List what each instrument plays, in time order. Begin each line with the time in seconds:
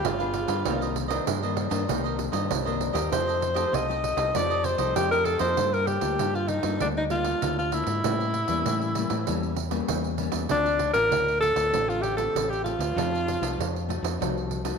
Already playing: nylon-string guitar B3 F4 G#4, cavaquinho G4 B4 F5
0.04 fingered electric bass G1, nylon-string guitar D3, alto saxophone F4, pandeiro
0.19 nylon-string guitar B3 F4 G#4, cavaquinho G4 B4 F5, pandeiro
0.34 pandeiro
0.48 fingered electric bass G2, cavaquinho G4 B4 F5, pandeiro
0.65 fingered electric bass C2, nylon-string guitar C3 D#3 A#3 D4, cavaquinho D#4 A#4 C5 D#5, pandeiro
0.81 cavaquinho A#4 C5 D#5, pandeiro
0.95 muted cavaquinho stroke, pandeiro
1.08 nylon-string guitar D#3 A#3 D4, cavaquinho A#4 C5 D#5, pandeiro
1.26 fingered electric bass G2, nylon-string guitar G2, cavaquinho D#4 A#4 C5 D#5, pandeiro
1.42 nylon-string guitar D#3 A#3 D4, cavaquinho A#4 C5 D#5, pandeiro
1.57 pandeiro
1.70 fingered electric bass G2, nylon-string guitar D#3 A#3 D4, cavaquinho A#4 C5 D#5, pandeiro
1.88 fingered electric bass C2, nylon-string guitar C3 D#3 A#3 D4, cavaquinho D#4 A#4 C5 D#5, pandeiro
2.04 cavaquinho A#4 C5 D#5, pandeiro
2.18 muted cavaquinho stroke, pandeiro
2.32 fingered electric bass G2, nylon-string guitar D#3 A#3 D4, cavaquinho A#4 C5 D#5, pandeiro
2.49 fingered electric bass C2, nylon-string guitar G2, pandeiro
2.65 nylon-string guitar D#3 A#3 D4, cavaquinho A#4 C5 D#5, pandeiro
2.81 pandeiro
2.93 fingered electric bass D#2, nylon-string guitar A3 D#4 G4, cavaquinho A#4 C5 D#5, pandeiro
3.11 fingered electric bass F2, nylon-string guitar F3, cavaquinho F4 A4 C5 D#5, alto saxophone C5, pandeiro
3.27 cavaquinho A4 C5 D#5, pandeiro
3.41 muted cavaquinho stroke, pandeiro
3.54 nylon-string guitar A3 D#4 G4, cavaquinho A4 C5 D#5, pandeiro
3.72 fingered electric bass C2, nylon-string guitar C3, cavaquinho F4 A4 C5 D#5, alto saxophone D#5, pandeiro
3.88 nylon-string guitar A3 D#4 G4, cavaquinho A4 C5 D#5, pandeiro
4.04 pandeiro
4.17 fingered electric bass C2, cavaquinho A4 C5 D#5, pandeiro
4.34 fingered electric bass F2, nylon-string guitar F3 A3 D#4 G4, cavaquinho F4 A4 C5 D#5, alto saxophone D5, pandeiro
4.50 cavaquinho A4 C5 D#5, pandeiro
4.64 alto saxophone C5, muted cavaquinho stroke, pandeiro
4.78 fingered electric bass C2, nylon-string guitar A3 D#4 G4, cavaquinho A4 C5 D#5, pandeiro
4.95 fingered electric bass F2, nylon-string guitar C3, alto saxophone G4, pandeiro
5.11 nylon-string guitar A3 D#4 G4, cavaquinho A4 C5 D#5, alto saxophone A#4, pandeiro
5.25 alto saxophone A4, pandeiro
5.39 fingered electric bass F2, nylon-string guitar A#3 F4 A4, cavaquinho A4 C5 D#5, alto saxophone C5, pandeiro
5.57 fingered electric bass G2, nylon-string guitar G3, pandeiro
5.73 alto saxophone A#4, pandeiro
5.87 alto saxophone G4, pandeiro
6.01 fingered electric bass D2, nylon-string guitar A#3 F4 A4, pandeiro
6.19 fingered electric bass G2, nylon-string guitar D3, pandeiro
6.35 alto saxophone F4, pandeiro
6.48 alto saxophone D#4, pandeiro
6.63 fingered electric bass G2, nylon-string guitar A#3 F4 A4, pandeiro
6.80 fingered electric bass D2, nylon-string guitar G3 A#3 F4 A4, alto saxophone D4, pandeiro
6.97 alto saxophone D#4, pandeiro
7.10 nylon-string guitar A#3 F4 A4, alto saxophone F4, pandeiro
7.24 pandeiro
7.42 fingered electric bass D2, nylon-string guitar D3 A#3 F4 A4, pandeiro
7.58 alto saxophone F4, pandeiro
7.72 nylon-string guitar A#3 F4 A4, alto saxophone E4, pandeiro
7.87 fingered electric bass G#2, pandeiro
8.04 nylon-string guitar A2 G3 A#3 C#4, fingered electric bass A2, pandeiro
8.20 pandeiro
8.34 pandeiro
8.48 fingered electric bass E2, nylon-string guitar G3 A#3 C#4, pandeiro
8.65 fingered electric bass A2, nylon-string guitar E3, pandeiro
8.81 pandeiro
8.95 nylon-string guitar G3 A#3 C#4, pandeiro
9.10 fingered electric bass A2, pandeiro
9.27 fingered electric bass E2, nylon-string guitar A2 G3 A#3 C#4, pandeiro
9.43 pandeiro
9.56 pandeiro
9.71 nylon-string guitar G3 A#3 C#4, pandeiro
9.88 fingered electric bass E2, nylon-string guitar E3, pandeiro
10.04 pandeiro
10.18 nylon-string guitar G3 A#3 C#4, pandeiro
10.32 fingered electric bass E2, pandeiro
10.49 fingered electric bass D2, nylon-string guitar D3 A3 C4 F4, alto saxophone D4, pandeiro
10.66 pandeiro
10.79 pandeiro
10.93 fingered electric bass A1, nylon-string guitar C4 F4, alto saxophone A#4, pandeiro
11.12 fingered electric bass D2, nylon-string guitar A2, pandeiro
11.28 pandeiro
11.40 nylon-string guitar A3 C4 F4, alto saxophone A4, pandeiro
11.56 fingered electric bass D2, pandeiro
11.73 fingered electric bass A1, nylon-string guitar D3 A3 C4 F4, pandeiro
11.89 alto saxophone F4, pandeiro
12.02 alto saxophone G4, pandeiro
12.17 nylon-string guitar A3 C4 F4, alto saxophone A4, pandeiro
12.35 fingered electric bass A1, nylon-string guitar A2, pandeiro
12.50 alto saxophone G4, pandeiro
12.64 nylon-string guitar A3 C4 F4, alto saxophone F4, pandeiro
12.79 fingered electric bass D2, pandeiro
12.96 fingered electric bass F2, nylon-string guitar F3 A3 D#4, pandeiro
13.15 pandeiro
13.28 pandeiro
13.41 fingered electric bass C2, nylon-string guitar A3 D#4, pandeiro
13.58 fingered electric bass F2, nylon-string guitar C3, pandeiro
13.76 pandeiro
13.88 nylon-string guitar A3 D#4 F#4, pandeiro
14.03 fingered electric bass F2, pandeiro
14.20 fingered electric bass C2, nylon-string guitar F3 A3 D#4 F#4, pandeiro
14.38 pandeiro
14.51 pandeiro
14.65 nylon-string guitar A3 D#4 F#4, pandeiro